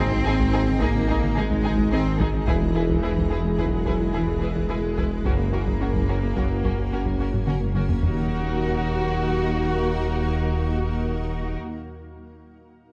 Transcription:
Already playing: tuba G#1, double bass section G#1, sub bass G#1, ambient pad G#3 D#4 G#4 D#5, cello section C4, french horn section D#4 G#4
0.11 synth arpeggio sound G#3, taiko
0.25 double bass section G#1, tuba G#1, synth arpeggio sound D#4, viola section D#4, violin section G#4
0.39 synth arpeggio sound G#3, taiko
0.53 viola section D#4, violin section G#4
0.67 synth arpeggio sound C4, taiko mid
0.81 tuba G#1, double bass section G#1, synth arpeggio sound G#3, cello section A#3, viola section D#4, violin section G#4, taiko
0.95 synth arpeggio sound C4, taiko mid
1.08 synth arpeggio sound G#3, viola section D#4, violin section G#4, taiko
1.22 synth arpeggio sound G#4, taiko mid
1.36 double bass section G#1, tuba G#1, cello section G#3, synth arpeggio sound C4, viola section D#4, violin section G#4, taiko mid
1.50 synth arpeggio sound G#3, taiko
1.63 synth arpeggio sound C4, viola section D#4, violin section G#4, taiko mid
1.78 synth arpeggio sound G#3, taiko
1.91 double bass section G#1, tuba G#1, synth arpeggio sound C4, cello section C4, viola section D#4, violin section G#4
2.06 synth arpeggio sound C4
2.18 cello section D#3, synth arpeggio sound G#3, viola section D#4, violin section G#4, taiko
2.34 synth arpeggio sound C4, taiko mid
2.47 tuba E1, double bass section E1, sub bass E1, cello section E3, synth arpeggio sound E3, ambient pad E4 B4, viola section E4, french horn section E4, violin section G#4 B4, taiko
2.62 synth arpeggio sound G#3
2.75 viola section E4, synth arpeggio sound E4, violin section G#4 B4
2.89 synth arpeggio sound E3, taiko
3.03 double bass section E1, tuba E1, synth arpeggio sound B3, viola section E4, violin section G#4 B4
3.17 synth arpeggio sound E3, taiko
3.31 viola section E4, violin section G#4 B4
3.45 synth arpeggio sound G#3
3.58 double bass section E1, tuba E1, synth arpeggio sound E3, cello section F#3, viola section E4, violin section G#4 B4, taiko
3.72 synth arpeggio sound G#3
3.85 synth arpeggio sound E3, viola section E4, violin section G#4 B4, taiko
4.00 synth arpeggio sound E4
4.13 double bass section E1, tuba E1, cello section E3, synth arpeggio sound G#3, viola section E4, violin section G#4 B4
4.27 synth arpeggio sound E3, taiko
4.41 synth arpeggio sound G#3, viola section E4, violin section G#4 B4
4.55 synth arpeggio sound E3, taiko
4.69 double bass section E1, tuba E1, synth arpeggio sound G#3, cello section G#3, viola section E4, violin section G#4 B4
4.83 synth arpeggio sound G#3
4.96 synth arpeggio sound E3, viola section E4, violin section G#4 B4, taiko
5.11 synth arpeggio sound G#3
5.24 double bass section F#1, sub bass F#1, tuba F#1, synth arpeggio sound F#3, ambient pad A#3 C#4 F#4 A#4, cello section A#3, french horn section C#4, viola section C#4, violin section F#4 A#4, taiko
5.39 synth arpeggio sound A#3
5.53 viola section C#4, synth arpeggio sound F#4, violin section F#4 A#4
5.67 synth arpeggio sound F#3, taiko
5.81 double bass section F#1, tuba F#1, viola section C#4, synth arpeggio sound C#4, violin section F#4 A#4
5.95 synth arpeggio sound F#3, taiko
6.08 viola section C#4, violin section F#4 A#4
6.23 synth arpeggio sound A#3
6.36 double bass section F#1, tuba F#1, synth arpeggio sound F#3, viola section C#4, french horn section F#4, violin section F#4 A#4, taiko
6.51 synth arpeggio sound A#3
6.64 synth arpeggio sound F#3, viola section C#4, violin section F#4 A#4, taiko
6.78 synth arpeggio sound F#4
6.92 double bass section F#1, tuba F#1, synth arpeggio sound A#3, viola section C#4, violin section F#4 A#4
7.06 synth arpeggio sound F#3, taiko
7.19 synth arpeggio sound A#3, viola section C#4, violin section F#4 A#4
7.33 synth arpeggio sound F#3, taiko low-mid
7.47 tuba F#1, double bass section F#1, synth arpeggio sound A#3, viola section C#4, violin section F#4 A#4, taiko mid
7.61 synth arpeggio sound A#3, taiko high
7.75 synth arpeggio sound F#3, viola section C#4, violin section F#4 A#4, taiko mid
7.89 synth arpeggio sound A#3, taiko low
8.03 sub bass D#1, tuba D#2, double bass section D#2, ambient pad A#3 D#4 F#4 A#4, french horn section A#3 F#4, cello section D#4, viola section F#4, violin section F#4 A#4, taiko low

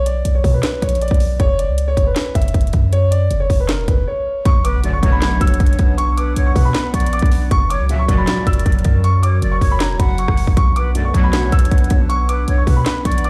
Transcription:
Already playing: 808-style bass B1
0.06 grand piano D5, closed hi-hat
0.25 808-style bass B1, closed hi-hat
0.35 grand piano C#5
0.44 808-style bass B2, kick, open hi-hat
0.54 grand piano B4
0.63 grand piano B4, snare, clap, closed hi-hat
0.82 808-style bass A#1, grand piano C#5, kick, closed hi-hat
0.89 closed hi-hat
0.95 closed hi-hat
1.01 grand piano D5, closed hi-hat
1.08 808-style bass B1, kick, closed hi-hat
1.14 closed hi-hat
1.20 open hi-hat
1.40 808-style bass F#1, grand piano C#5, kick, closed hi-hat
1.59 grand piano D5, closed hi-hat
1.68 808-style bass C#2
1.78 closed hi-hat
1.88 grand piano C#5
1.97 808-style bass F#1, kick, closed hi-hat
2.06 grand piano B4
2.16 grand piano B4, snare, clap, closed hi-hat
2.35 808-style bass F#1, grand piano E5, kick, closed hi-hat
2.42 closed hi-hat
2.48 closed hi-hat
2.54 808-style bass F#1, kick, closed hi-hat
2.61 closed hi-hat
2.67 closed hi-hat
2.73 808-style bass F#2, kick, closed hi-hat
2.93 grand piano C#5, closed hi-hat
3.11 grand piano D5, closed hi-hat
3.31 808-style bass F#1, closed hi-hat
3.40 grand piano C#5
3.50 808-style bass F#1, kick, open hi-hat
3.60 grand piano B4
3.69 grand piano A#4, snare, clap, closed hi-hat
3.79 808-style bass E1
3.88 808-style bass F#1, grand piano B4, kick, closed hi-hat
4.07 grand piano C#5
4.45 808-style bass B1, analog synth pad B3 D4 B4 F#5, grand piano C#6, kick, closed hi-hat, impact
4.64 flute B4, grand piano D6, closed hi-hat
4.84 analog polysynth B1 F#2 C#3 D3 A3, flute D5, closed hi-hat
4.93 grand piano C#6
5.03 808-style bass B1, analog polysynth D2 A2 B2 F#3 C#4, flute C#5, kick, closed hi-hat
5.12 grand piano B5
5.22 grand piano B5, snare, clap, closed hi-hat
5.41 808-style bass B1, grand piano E6, kick, closed hi-hat
5.47 closed hi-hat
5.54 closed hi-hat
5.60 808-style bass B1, kick, closed hi-hat
5.67 closed hi-hat
5.73 closed hi-hat
5.79 808-style bass B1, kick, closed hi-hat
5.98 grand piano C#6, closed hi-hat
6.17 flute B4, grand piano D6, closed hi-hat
6.36 808-style bass B1, flute C#5, closed hi-hat
6.46 grand piano C#6
6.56 808-style bass B2, flute B4, kick, open hi-hat
6.65 grand piano B5
6.74 grand piano B5, snare, clap, closed hi-hat
6.94 808-style bass A#1, flute D5, grand piano C#6, kick, closed hi-hat
7.00 closed hi-hat
7.06 closed hi-hat
7.13 grand piano D6, closed hi-hat
7.19 808-style bass B1, kick, closed hi-hat
7.26 closed hi-hat
7.32 open hi-hat
7.51 808-style bass F#1, analog synth pad F#3 F#4 A#4, grand piano C#6, kick, closed hi-hat
7.70 flute C#5, grand piano D6, closed hi-hat
7.80 808-style bass C#2
7.89 analog polysynth C#2 G#2 A#2 F3 F#3 C#4, flute E5, closed hi-hat
7.99 grand piano C#6
8.08 808-style bass F#1, analog polysynth C#2 G#2 A#2 F3 F#3 C#4, flute D5, kick, closed hi-hat
8.18 grand piano B5
8.27 grand piano B5, snare, clap, closed hi-hat
8.47 808-style bass F#1, grand piano E6, kick, closed hi-hat
8.53 closed hi-hat
8.59 closed hi-hat
8.66 808-style bass F#1, kick, closed hi-hat
8.72 closed hi-hat
8.79 closed hi-hat
8.84 808-style bass F#2, kick, closed hi-hat
9.04 grand piano C#6, closed hi-hat
9.23 flute C#5, grand piano D6, closed hi-hat
9.42 808-style bass F#1, flute D5, closed hi-hat
9.52 grand piano C#6
9.61 808-style bass F#1, flute C#5, kick, open hi-hat
9.71 grand piano B5
9.80 grand piano A#5, snare, clap, closed hi-hat
9.90 808-style bass E1
9.99 808-style bass F#1, flute F#5, grand piano B5, kick, closed hi-hat
10.18 grand piano C#6, closed hi-hat
10.28 808-style bass F#1, kick, cross-stick
10.37 open hi-hat
10.47 808-style bass F#1, kick
10.57 808-style bass B1, analog synth pad B3 D4 B4 F#5, grand piano C#6, kick, closed hi-hat
10.76 flute B4, grand piano D6, closed hi-hat
10.95 analog polysynth B1 F#2 C#3 D3 A3, flute D5, closed hi-hat
11.05 grand piano C#6
11.14 808-style bass B1, analog polysynth D2 A2 B2 F#3 C#4, flute C#5, kick, closed hi-hat
11.24 grand piano B5
11.33 grand piano B5, snare, clap, closed hi-hat
11.52 808-style bass B1, grand piano E6, kick, closed hi-hat
11.59 closed hi-hat
11.65 closed hi-hat
11.71 808-style bass B1, kick, closed hi-hat
11.78 closed hi-hat
11.84 closed hi-hat
11.90 808-style bass B1, kick, closed hi-hat
12.09 grand piano C#6, closed hi-hat
12.29 flute B4, grand piano D6, closed hi-hat
12.48 808-style bass B1, flute C#5, closed hi-hat
12.58 grand piano C#6
12.67 808-style bass B2, flute B4, kick, open hi-hat
12.76 grand piano B5
12.86 grand piano B5, snare, clap, closed hi-hat
13.05 808-style bass A#1, flute D5, grand piano C#6, kick, closed hi-hat
13.12 closed hi-hat
13.18 closed hi-hat
13.24 grand piano D6, closed hi-hat

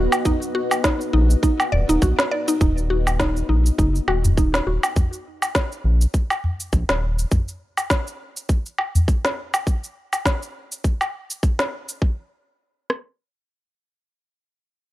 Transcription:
Already playing: ambient pad B3 F#4 B4 D#5, synth pluck F#4
0.12 low woodblock, shaker
0.25 synth pluck D#4, kick, udu, shaker
0.42 shaker
0.55 synth pluck F#4
0.71 low woodblock, shaker
0.84 synth pluck D#4, kick, snare, shaker
1.01 shaker
1.13 analog synth bass A#1, synth pluck D#4
1.30 shaker
1.43 synth pluck D#4, kick, shaker
1.60 low woodblock, shaker
1.72 analog synth bass D#1, synth pluck D5, udu
1.89 analog synth bass D#1, synth pluck D#4, shaker
2.02 analog synth bass A#1, synth pluck F#4, kick, shaker
2.19 snare, shaker
2.31 synth pluck D5
2.48 synth pluck D#4, shaker
2.61 analog synth bass D#1, synth pluck D#4, kick, udu, shaker
2.78 shaker
2.90 synth pluck F#4
3.07 low woodblock, shaker
3.19 synth pluck D#4, kick, snare, shaker
3.37 shaker
3.49 analog synth bass A#1, synth pluck D#4
3.66 shaker
3.78 analog synth bass F#1, synth pluck D#4, kick, shaker
3.96 shaker
4.08 analog synth bass D#1, synth pluck F#4, low woodblock
4.25 udu, shaker
4.37 synth pluck D#4, kick, shaker
4.54 snare, shaker
4.67 analog synth bass D#1, synth pluck F#4
4.83 low woodblock, shaker
4.96 kick, udu, shaker
5.13 shaker
5.42 low woodblock, shaker
5.55 kick, snare, shaker
5.72 shaker
5.84 analog synth bass A#1
6.01 shaker
6.14 kick, shaker
6.30 low woodblock, shaker
6.44 udu
6.60 shaker
6.73 analog synth bass A#1, kick, shaker
6.89 analog synth bass D#1, snare, shaker
7.19 shaker
7.32 kick, udu, shaker
7.48 shaker
7.77 low woodblock, shaker
7.90 kick, snare, shaker
8.07 shaker
8.37 shaker
8.49 kick, shaker
8.66 shaker
8.78 low woodblock
8.95 udu, shaker
9.08 kick, shaker
9.25 snare, shaker
9.54 low woodblock, shaker
9.67 kick, shaker
9.84 shaker
10.13 low woodblock, shaker
10.26 kick, snare, shaker
10.43 shaker
10.72 shaker
10.84 kick, shaker
11.01 low woodblock, shaker
11.30 shaker
11.43 kick, shaker
11.59 snare, shaker
11.89 shaker
12.02 kick
12.90 cross-stick

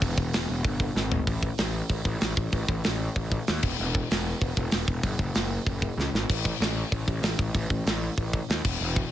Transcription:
0.02 picked electric bass E1, kick, open hi-hat
0.18 picked electric bass E1, kick
0.33 picked electric bass E1, snare, open hi-hat
0.50 picked electric bass E1
0.65 picked electric bass G1, kick
0.80 kick
0.95 picked electric bass G#1, snare
1.12 floor tom
1.27 picked electric bass A1, kick, open hi-hat
1.43 kick
1.58 picked electric bass A1, snare, open hi-hat
1.89 picked electric bass A1, kick, open hi-hat
2.05 picked electric bass A1, kick
2.21 picked electric bass A1, snare, open hi-hat
2.37 picked electric bass A1, kick
2.52 picked electric bass A1, kick, open hi-hat
2.68 picked electric bass A1, kick
2.84 picked electric bass A1, snare, open hi-hat
3.16 picked electric bass A1, kick, open hi-hat
3.32 kick
3.47 picked electric bass D#2, snare, open hi-hat
3.63 picked electric bass E1, kick, crash
3.80 picked electric bass E1
3.95 kick
4.11 picked electric bass E1, snare, open hi-hat
4.41 picked electric bass E1, kick, open hi-hat
4.57 picked electric bass E1, kick
4.71 picked electric bass E1, snare, open hi-hat
4.88 picked electric bass E1, kick
5.03 picked electric bass F#1, kick, open hi-hat
5.19 picked electric bass F#1, kick
5.35 picked electric bass F#1, snare, open hi-hat
5.66 picked electric bass F#1, kick, open hi-hat
5.82 kick
5.97 picked electric bass C#2, snare
6.13 picked electric bass G#1, snare
6.30 picked electric bass A1, kick, crash
6.45 kick
6.60 picked electric bass A1, snare, open hi-hat
6.92 picked electric bass A1, kick, open hi-hat
7.08 picked electric bass A1, kick
7.22 picked electric bass A1, snare, open hi-hat
7.39 picked electric bass A1, kick
7.55 picked electric bass A1, kick, open hi-hat
7.70 picked electric bass A1, kick
7.86 picked electric bass A1, snare, open hi-hat
8.18 picked electric bass A1, kick, open hi-hat
8.33 kick
8.50 picked electric bass D#2, snare, open hi-hat
8.65 picked electric bass E1, kick, crash
8.81 picked electric bass E1
8.96 kick

